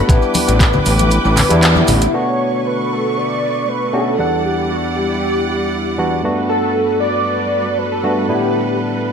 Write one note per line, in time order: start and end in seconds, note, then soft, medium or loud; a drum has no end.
0.00 1.59 B4 loud
0.08 0.18 A1 loud
0.08 1.47 G3 medium
0.08 1.48 B3 medium
0.08 1.48 D4 medium
0.08 1.48 E4 medium
0.08 2.12 B4 medium
0.08 2.12 G5 medium
0.08 2.12 D6 medium
0.08 kick loud
0.08 closed hi-hat medium
0.08 maracas soft
0.22 maracas soft
0.34 open hi-hat loud
0.34 high conga medium
0.34 maracas medium
0.47 0.80 A1 medium
0.47 closed hi-hat medium
0.47 maracas soft
0.60 kick loud
0.60 clap loud
0.60 closed hi-hat medium
0.60 maracas medium
0.73 low conga medium
0.73 maracas soft
0.86 1.19 A1 medium
0.86 open hi-hat medium
0.86 maracas medium
0.98 closed hi-hat medium
0.98 high conga medium
0.98 maracas soft
1.11 closed hi-hat medium
1.11 maracas medium
1.25 1.43 A1 medium
1.25 maracas soft
1.37 clap medium
1.37 open hi-hat loud
1.37 low conga medium
1.37 maracas loud
1.49 1.83 E2 medium
1.49 2.10 G3 medium
1.49 2.11 B3 medium
1.49 2.11 D4 medium
1.49 2.11 E4 loud
1.49 closed hi-hat medium
1.49 maracas soft
1.62 2.16 E4 medium
1.62 clap loud
1.62 closed hi-hat medium
1.62 maracas medium
1.76 high conga medium
1.76 maracas soft
1.88 2.07 A1 loud
1.88 open hi-hat loud
1.88 low conga medium
1.88 maracas loud
2.01 closed hi-hat medium
2.01 maracas soft
2.13 3.90 B2 medium
2.13 4.17 D3 medium
2.13 3.90 A3 medium
2.13 4.17 A3 medium
2.13 3.90 B3 medium
2.13 3.91 D4 medium
2.13 3.91 F#4 medium
2.13 4.17 B4 medium
2.13 2.68 C#5 loud
2.13 4.17 C#6 medium
2.67 2.93 B4 loud
2.92 3.19 A4 medium
3.17 3.70 D5 loud
3.68 3.94 B4 loud
3.93 4.15 B2 medium
3.93 4.15 A3 medium
3.93 4.15 C#4 medium
3.93 4.15 D4 medium
3.93 4.16 F#4 medium
3.93 4.46 A4 loud
4.18 5.95 E2 medium
4.18 5.95 G3 medium
4.18 9.12 G3 medium
4.18 5.96 B3 medium
4.18 5.96 D4 medium
4.18 6.22 E4 medium
4.18 6.22 D5 medium
4.18 6.22 F#5 medium
4.18 5.96 F#5 medium
4.45 4.70 G4 medium
4.70 4.82 F#4 medium
4.96 5.95 G4 medium
5.98 6.20 E2 medium
5.98 6.20 G3 medium
5.98 6.20 B3 medium
5.98 6.21 D4 medium
5.98 6.21 F#4 medium
6.23 8.00 G2 medium
6.23 8.00 A3 medium
6.23 8.01 B3 medium
6.23 8.01 D4 medium
6.23 8.27 F#4 medium
6.23 8.01 F#4 medium
6.23 9.12 A4 medium
6.23 9.12 B4 medium
6.49 6.97 A4 loud
7.00 7.80 D5 loud
7.78 7.91 B4 loud
7.92 8.27 A4 medium
8.03 8.25 G2 medium
8.03 8.26 A3 medium
8.03 8.26 B3 medium
8.03 8.26 D4 medium
8.03 8.26 F#4 medium
8.28 9.12 A2 medium
8.28 9.12 D3 medium
8.28 9.12 G3 medium
8.28 9.12 B3 medium
8.28 9.12 D4 medium
8.28 9.12 E4 medium
8.28 8.77 G4 medium